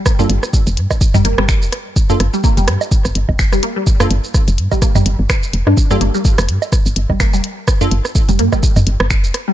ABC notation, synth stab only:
X:1
M:4/4
L:1/16
Q:"Swing 16ths" 1/4=126
K:Gm
V:1 name="Synth stab"
z [B,DFA] z12 z2 | z [B,DFA] z12 z2 | z [B,DFA] z12 z2 | z [B,DFA] z12 z2 |
z [B,DFA] z12 z2 |]